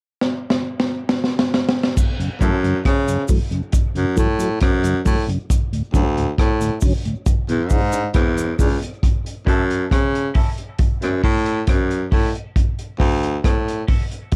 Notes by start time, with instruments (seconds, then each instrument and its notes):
0.21 snare
0.50 snare
0.80 snare
1.09 snare
1.24 snare
1.39 snare
1.54 snare
1.69 snare
1.83 snare
1.97 kick, crash, cabasa
2.19 tonewheel organ F#2 C#3, closed hi-hat
2.41 baritone saxophone F#2, tonewheel organ E3 F#3 A3, clean electric guitar C#4 E4 A4, kick, closed hi-hat, cabasa
2.64 tonewheel organ F#2 C#3, closed hi-hat
2.85 baritone saxophone C#3, kick, cross-stick, closed hi-hat
3.08 tonewheel organ F#2 C#3, closed hi-hat, cabasa
3.28 tonewheel organ E3 F#3 A3, kick, open hi-hat, cabasa
3.51 tonewheel organ F#2 C#3, closed hi-hat
3.72 kick, closed hi-hat, cabasa
3.95 tonewheel organ F#2 C#3, baritone saxophone F#2, closed hi-hat
4.16 baritone saxophone A2, tonewheel organ E3 F#3 A3, kick, closed hi-hat, cabasa
4.39 tonewheel organ F#3 A3, closed hi-hat, cabasa
4.60 baritone saxophone F#2, kick, cross-stick, closed hi-hat
4.84 tonewheel organ F#2 C#3, closed hi-hat, cabasa
5.05 baritone saxophone A2, tonewheel organ E3 F#3 A3, kick, open hi-hat, cabasa
5.28 tonewheel organ F#2 C#3, closed hi-hat
5.50 kick, closed hi-hat, cabasa
5.72 tonewheel organ D2 A2, closed hi-hat
5.94 baritone saxophone D2, tonewheel organ D3 F#3 C#4, kick, closed hi-hat, cabasa
6.17 tonewheel organ D2 A2, closed hi-hat
6.38 baritone saxophone A2, kick, cross-stick, closed hi-hat
6.61 tonewheel organ D2 A2, closed hi-hat, cabasa
6.81 tonewheel organ D3 F#3 C#4, kick, open hi-hat, cabasa
7.05 tonewheel organ D2 A2, closed hi-hat
7.26 kick, closed hi-hat, cabasa
7.49 tonewheel organ E2 B2, baritone saxophone E2, closed hi-hat
7.70 baritone saxophone G#2, tonewheel organ E3 G#3 D4, kick, open hi-hat, cabasa
7.92 tonewheel organ G#3 D4, closed hi-hat, cabasa
8.14 baritone saxophone E2, kick, cross-stick, closed hi-hat
8.37 tonewheel organ E2 B2, closed hi-hat, cabasa
8.58 baritone saxophone C#2, tonewheel organ E3 G#3 D4, kick, open hi-hat, cabasa
8.81 tonewheel organ E2 B2, closed hi-hat
9.03 kick, closed hi-hat
9.25 tonewheel organ F#2 C#3, closed hi-hat
9.45 baritone saxophone F#2, tonewheel organ F#3 A3 E4, clean electric guitar C#4 E4 A4, kick, closed hi-hat
9.70 closed hi-hat
9.91 baritone saxophone C#3, kick, cross-stick, closed hi-hat
10.15 closed hi-hat
10.34 tonewheel organ F#3 A3 E4, clean electric guitar C#4 E4 A4, kick, open hi-hat
10.58 tonewheel organ F#2 C#3, closed hi-hat
10.79 kick, closed hi-hat
11.02 baritone saxophone F#2, cross-stick, closed hi-hat
11.23 baritone saxophone A2, clean electric guitar C#4 E4 A4, kick, open hi-hat
11.46 clean electric guitar C#4 E4 A4, closed hi-hat
11.67 baritone saxophone F#2, kick, cross-stick, closed hi-hat
11.91 closed hi-hat
12.11 baritone saxophone A2, clean electric guitar C#4 E4 A4, kick, open hi-hat
12.35 muted clean electric guitar stroke, closed hi-hat
12.56 kick, closed hi-hat
12.79 closed hi-hat
13.00 baritone saxophone D2, clean electric guitar C#4 F#4 A4, kick, open hi-hat
13.23 closed hi-hat
13.44 baritone saxophone A2, kick, cross-stick, closed hi-hat
13.68 closed hi-hat
13.87 tonewheel organ F#3 C#4 D4, clean electric guitar C#4 F#4 A4, kick, open hi-hat
14.11 closed hi-hat
14.32 kick, closed hi-hat